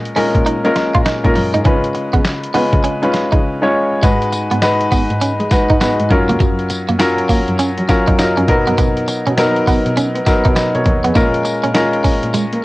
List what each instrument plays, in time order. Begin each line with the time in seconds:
Already playing: grand piano G#3 C#4 F4 A#4
0.06 closed hi-hat
0.16 cello A#2, grand piano G#3 C#4 F4 A#4, clean electric guitar C#4, open hi-hat
0.35 cello A#2, kick, closed hi-hat
0.46 cello A#3, clean electric guitar D#4, closed hi-hat
0.64 grand piano G#3 C#4 F4 A#4, cello A#3, closed hi-hat
0.76 muted clean electric guitar stroke, snare, closed hi-hat
0.94 cello A#2, clean electric guitar F4, kick, closed hi-hat
1.06 clean electric guitar D#4, snare, clap, closed hi-hat
1.24 cello A#2, grand piano G#3 C#4 F4 A#4, kick, closed hi-hat
1.35 cello F#2, muted clean electric guitar stroke, open hi-hat
1.54 cello G#2, clean electric guitar D#4, closed hi-hat
1.65 cello C#3, grand piano G#3 C#4 F4 B4, clean electric guitar C#4, kick, closed hi-hat
1.84 closed hi-hat
1.95 muted clean electric guitar stroke, closed hi-hat
2.13 cello C#3, clean electric guitar B3, kick, closed hi-hat
2.24 snare, clap, closed hi-hat
2.43 closed hi-hat
2.54 cello C#3, grand piano G#3 C#4 F4 B4, clean electric guitar B3, open hi-hat
2.73 cello C#3, kick, closed hi-hat
2.84 clean electric guitar C#4, cello C#4, closed hi-hat
3.02 grand piano G#3 C#4 F4 B4, cello C#4, closed hi-hat
3.14 muted clean electric guitar stroke, snare, closed hi-hat
3.32 cello C#3, clean electric guitar D#4, kick, closed hi-hat
3.62 grand piano G#3 C#4 F4 C#5
4.02 cello G#2, grand piano G#3 D#4 F#4 B4, clean electric guitar G#3, kick, closed hi-hat, tambourine
4.22 closed hi-hat
4.32 muted clean electric guitar stroke, closed hi-hat, tambourine
4.51 cello G#2, clean electric guitar B3, closed hi-hat
4.62 grand piano G#3 D#4 F#4 B4, snare, clap, closed hi-hat, tambourine
4.81 closed hi-hat
4.92 cello G#2, clean electric guitar B3, kick, open hi-hat, tambourine
5.10 cello G#2, closed hi-hat
5.21 cello G#3, clean electric guitar C#4, closed hi-hat, tambourine
5.40 cello G#3, closed hi-hat
5.51 grand piano G#3 D#4 F#4 B4, muted clean electric guitar stroke, kick, snare, closed hi-hat, tambourine
5.70 cello G#2, clean electric guitar D#4, kick, closed hi-hat
5.81 grand piano G#3 D#4 F#4 B4, clean electric guitar B3, snare, clap, closed hi-hat, tambourine
6.00 cello G#2, closed hi-hat
6.10 cello F#2, grand piano F#3 C#4 F4 A#4, muted clean electric guitar stroke, kick, closed hi-hat
6.29 cello C#2, clean electric guitar A#3, closed hi-hat
6.40 cello F#2, clean electric guitar F#3, kick, closed hi-hat, tambourine
6.59 closed hi-hat
6.70 muted clean electric guitar stroke, closed hi-hat, tambourine
6.89 cello F#2, clean electric guitar A#3, closed hi-hat
6.99 grand piano F#3 C#4 F4 A#4, snare, clap, closed hi-hat, tambourine
7.19 closed hi-hat
7.29 cello F#2, clean electric guitar A#3, kick, open hi-hat, tambourine
7.48 cello F#2, closed hi-hat
7.59 cello F#3, clean electric guitar C#4, closed hi-hat, tambourine
7.78 cello F#3, closed hi-hat
7.88 grand piano F#3 C#4 F4 A#4 F5, muted clean electric guitar stroke, kick, snare, closed hi-hat, tambourine
8.07 cello F#2, clean electric guitar D#4, kick, closed hi-hat
8.18 grand piano F#3 C#4 F4 A#4 D#5, snare, clap, closed hi-hat, tambourine
8.37 cello F#2, clean electric guitar C#4, closed hi-hat
8.48 cello B2, grand piano F#3 B3 D#4 A#4, muted clean electric guitar stroke, kick, closed hi-hat
8.67 cello F#2, clean electric guitar B3, closed hi-hat
8.78 cello B2, clean electric guitar B3, kick, closed hi-hat, tambourine
8.97 closed hi-hat
9.08 muted clean electric guitar stroke, closed hi-hat, tambourine
9.26 cello B2, clean electric guitar C#4, closed hi-hat
9.37 grand piano F#3 B3 D#4 A#4, snare, clap, closed hi-hat, tambourine
9.56 closed hi-hat
9.67 cello B2, clean electric guitar B3, kick, open hi-hat, tambourine
9.86 cello B2, closed hi-hat
9.97 cello B3, clean electric guitar C#4, closed hi-hat, tambourine
10.15 cello B3, closed hi-hat
10.26 grand piano F#3 B3 D#4 A#4, muted clean electric guitar stroke, kick, snare, closed hi-hat, tambourine
10.45 cello B2, clean electric guitar D#4, kick, closed hi-hat
10.56 clean electric guitar B3, grand piano B4 D#5, snare, clap, closed hi-hat, tambourine
10.75 cello B2, grand piano A#4 C#5, closed hi-hat
10.86 cello D#2, muted clean electric guitar stroke, kick, closed hi-hat
11.04 cello F2, clean electric guitar B3, grand piano G#4 B4, closed hi-hat
11.15 cello A#2, grand piano G#3 C#4 F4 A#4, clean electric guitar A#3, kick, closed hi-hat, tambourine
11.34 closed hi-hat
11.45 muted clean electric guitar stroke, closed hi-hat, tambourine
11.64 cello A#2, clean electric guitar C#4, closed hi-hat
11.74 grand piano G#3 C#4 F4 A#4, snare, clap, closed hi-hat, tambourine
11.93 closed hi-hat
12.04 cello A#2, clean electric guitar C#4, kick, open hi-hat, tambourine
12.23 cello A#2, closed hi-hat
12.34 clean electric guitar G#3, cello A#3, closed hi-hat, tambourine
12.53 cello A#3, closed hi-hat